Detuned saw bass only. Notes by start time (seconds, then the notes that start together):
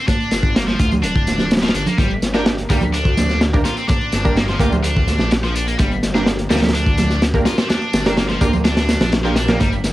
0.32 G1
0.80 D2
1.03 D1
1.74 G1
1.98 G1
2.22 G1
2.70 D2
4.13 G1
4.60 D2
5.20 A#1
5.80 G1
6.03 G1
6.50 D2
7.93 G1
8.41 D2
9.01 A#1
9.61 G1
9.84 G1